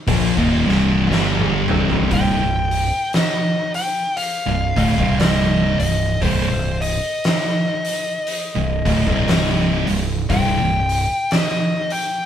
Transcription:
0.07 A#1 A#2 F3, kick, open hi-hat
0.37 D#1 D#2 A#2, kick
0.66 C1 C2 G2 C3, snare
1.09 G1 G2 D3 G3, snare
1.40 high tom
1.68 C1 C2 G2 C3, mid tom
1.90 floor tom
2.11 C1 C2 G2 G5, kick, open hi-hat
2.40 C1 C2 G2
2.71 open hi-hat
3.13 D#5, snare, open hi-hat
3.74 G5, open hi-hat
4.17 F5, open hi-hat
4.46 C1 C2 G2
4.76 D1 D2 A2, kick, open hi-hat
4.97 C1 C2 G2 C3, kick
5.19 D#5, snare, open hi-hat
5.78 C1 C2 G2 D#5, open hi-hat
6.22 C1 C2 G2 C5, kick, open hi-hat
6.52 C1 C2 G2
6.82 D#5, open hi-hat
7.24 snare, open hi-hat
7.85 open hi-hat
8.27 open hi-hat
8.56 C1 C2 G2
8.85 D1 D2 A2, kick, open hi-hat
9.06 C1 C2 G2 C3, kick
9.28 snare, open hi-hat
9.87 C1 C2 G2, open hi-hat
10.29 C1 C2 G2 G5, kick, open hi-hat
10.60 C1 C2 G2
10.89 open hi-hat
11.31 D#5, snare, open hi-hat
11.90 G5, open hi-hat

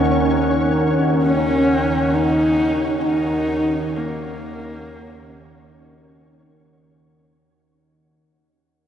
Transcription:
Already playing: D#2 D#3 C#4 A#4 C#5 F#5
1.23 C#4
2.14 D#4
3.04 D#4
3.96 A#3

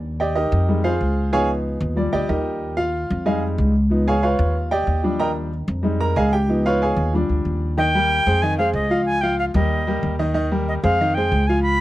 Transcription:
Already playing: D#2
0.20 G4 D5 D#5 G5
0.35 D#4 G4 A#4 D#5
0.52 F2
0.69 G3 G#3 D#4
0.84 F4 G#4 C5 F5
1.01 C#2
1.32 F3 B3 D#4 G#4 C#5 F5 G#5
1.80 D#2
1.96 F3 G3 D5
2.13 D2 G4 D5 D#5 G5
2.29 D#2 D#4 G4 A#4 D#5
2.77 F4 F5
3.10 F2
3.26 G3 G#3 D#4 G#4 D#5 F5 G#5
3.58 C#2
3.90 F3 B3 D#4
4.08 G#4 C#5 F5 G#5
4.23 F4 B4 C#5 F5
4.39 D#2
4.71 G4 D5 D#5 G5
4.87 D#2
5.03 F3 G3 D4
5.19 A#4 D#5 G5 A#5
5.68 F2
5.83 G3 G#3 D#4
6.00 A#4 A#5
6.16 C#2 G#4 D#5 F5 G#5
6.33 G4 G5
6.49 F3 B3 D#4
6.66 F4 B4 C#5 F5
6.82 G#4 C#5 F5 G#5
6.96 D#2
7.13 F3 G3 D4
7.29 D2
7.45 D#2
7.78 D#3 D#4 D#5 G5
7.95 G3 G4 A#4
8.26 F2 G#3 G#4 C5
8.42 D#3 D#4 D#5 G#5
8.58 G#3 G#4 C5 F5
8.73 C#2 D#5
8.90 F3 F4 F5
9.06 G#5
9.21 F3 F4 F5 G5
9.39 F5
9.54 D#2 G3 G4 A#4 D#5
9.87 G3 G4 A#4
10.03 D#2
10.19 D#3 D#4 D#5
10.34 D#3 D#4 D#5
10.52 G3 G4 A#4
10.68 D#5
10.83 F2 G#3 G#4 C5 F5
11.01 D#3 D#4 D#5
11.14 G#3 G#4 C5 G5
11.32 C#2
11.47 F3 F4 F5 G#5
11.62 B5

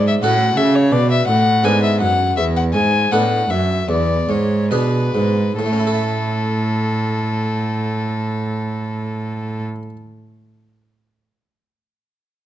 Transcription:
Already playing: G#2
0.08 E5
0.23 A2 C#4 F#4 A4 F#5
0.57 C#3 E5
0.75 C#5
0.92 B2 D5
1.11 E5
1.28 A2 F#5
1.64 G#2 B3 D4 A4 G#5
1.84 E5
2.00 F#2 F#5
2.36 E2 E5
2.57 F#5
2.73 G#2 G#5
3.11 A2 B3 D4 A4 F#5
3.50 F#2 E5
3.89 E2 D5
4.29 G#2 C#5
4.71 B2 B3 D4 G#4 B4
5.15 G#2
5.59 A2 A4
5.66 A3
5.73 C#4
5.80 E4
5.87 A4
5.94 E5

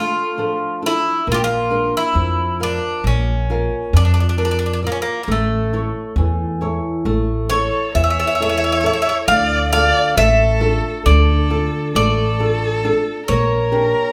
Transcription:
Already playing: A3 D4 F4 A4
0.38 F3 D4 A4
0.82 D4 E4 A4
1.27 A#1 A#3
1.32 F4 G4
1.44 F4
1.70 D4 A#4 D5
1.97 E4
2.14 F2 F3
2.60 D4 F4 A#4 F5
3.04 A#1 A#3 C#4
3.50 F4 A#4 F5
3.93 F2 F3 D4
4.05 D4
4.14 D4
4.20 D4
4.29 D4
4.37 D4 F4 A#4 D5
4.45 D4
4.51 D4
4.59 D4
4.66 D4
4.73 D4
4.82 F4 A#4 D5
4.87 A#3
4.92 C#4
5.02 A#3
5.23 A#3
5.28 A1 A3
5.73 E4 A4 C#5
6.16 E2 E3
6.61 E4 A4 C#5
7.05 A1 A3
7.50 E4 A4 C#5
7.95 E2 E3 C#5 E5
8.04 E5
8.10 E5
8.20 E5
8.27 E5
8.35 E5
8.40 E4 A4 C#5 E5
8.49 E5
8.58 E5
8.64 E5
8.72 E5
8.81 E4 A4 E5
8.85 C#5 E5
8.93 E5
9.02 E5
9.09 E5
9.28 D2 D3 D5 F5
9.72 D4 F4 A4 D5 F5
10.17 A1 A3 A4 E5
10.60 D4 F4 A4
11.06 D2 D3 A4 D5
11.50 D4 F4 A4
11.95 A1 A3 A4 D5
12.40 D4 F4 A4
12.84 D4 F4 A4
13.28 A#1 A#3 A#4 C#5
13.72 D4 G4 A#4

